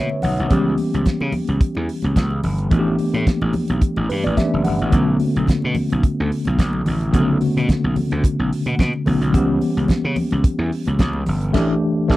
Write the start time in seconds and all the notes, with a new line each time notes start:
Already playing: D3 A3 B3 C#4 F#4 B4 C#5 E5
0.09 muted conga
0.22 B1 F#5, open hi-hat, low conga
0.38 B1, closed hi-hat
0.49 C#2 E3 G3 B3 C#4 G4, kick, closed hi-hat, muted conga, low conga
0.78 open hi-hat, high conga
0.94 C#2, closed hi-hat
1.06 muted slap bass stroke, kick, snare, closed hi-hat, muted conga, high conga
1.21 C#3, muted conga
1.32 open hi-hat, high conga, low conga
1.47 C#2, closed hi-hat
1.61 kick, closed hi-hat, muted conga
1.75 E2, muted conga
1.89 open hi-hat
2.02 C#2, closed hi-hat, high conga
2.16 C#2, kick, snare, closed hi-hat, muted conga, high conga
2.30 muted conga
2.44 G1, open hi-hat, low conga
2.58 closed hi-hat
2.70 A1 E3 A3 B3 D4 F#4, kick, closed hi-hat, muted conga, low conga
2.79 G4
2.99 open hi-hat, high conga
3.14 A2, closed hi-hat, high conga
3.27 kick, snare, closed hi-hat, muted conga, high conga
3.41 A1, muted conga
3.53 open hi-hat, high conga, low conga
3.68 B1, closed hi-hat
3.81 kick, closed hi-hat, muted conga
3.96 A1, muted conga
4.09 G2 B4, open hi-hat
4.24 A1 D5, closed hi-hat, high conga
4.37 E3 A3 B3 C#4 G4 E5, kick, snare, closed hi-hat, high conga
4.44 D4
4.54 F#1
4.64 G1 F#5, open hi-hat, low conga
4.79 A1, closed hi-hat
4.90 B1 D3 A3 B3 C#4 F#4, kick, closed hi-hat, low conga
5.20 open hi-hat, high conga
5.36 B1, closed hi-hat
5.47 kick, snare, closed hi-hat, high conga
5.62 B2, muted conga
5.75 open hi-hat, high conga, low conga
5.90 B1, closed hi-hat
6.03 kick, closed hi-hat
6.20 D2
6.32 open hi-hat
6.45 B1, closed hi-hat, high conga
6.59 B1, kick, snare, closed hi-hat, high conga
6.73 muted conga
6.86 A1, open hi-hat, low conga
7.01 closed hi-hat
7.12 B1 C#3 A3 B3 C#4 F#4, kick, closed hi-hat, muted conga, low conga
7.19 D3
7.41 open hi-hat, high conga
7.57 B2, closed hi-hat
7.69 kick, snare, closed hi-hat, muted conga, high conga
7.84 B1
7.96 open hi-hat, high conga, low conga
8.11 D2, closed hi-hat
8.24 kick, closed hi-hat, muted conga
8.39 B1
8.53 open hi-hat
8.66 B2, closed hi-hat, high conga
8.79 B2, kick, snare, closed hi-hat, muted conga, high conga
8.94 muted conga
9.06 B1 D3 A3 B3 C#4 F#4, open hi-hat, low conga
9.21 B1, closed hi-hat
9.32 C#2 E3 G3 B3 C#4 G4, kick, closed hi-hat, low conga
9.61 open hi-hat, high conga
9.77 C#2, closed hi-hat
9.88 muted slap bass stroke, kick, snare, closed hi-hat, high conga
10.05 C#3
10.16 open hi-hat, high conga, low conga
10.31 C#2, closed hi-hat
10.44 kick, closed hi-hat
10.59 E2
10.72 open hi-hat
10.85 C#2, closed hi-hat, high conga
10.99 C#2, kick, snare, closed hi-hat, muted conga, high conga
11.13 muted conga
11.26 G1, open hi-hat, low conga
11.41 closed hi-hat
11.53 A1 E3 A3 D4 G4, kick, snare, crash
12.08 A1 E3 A3 D4 G4, kick, snare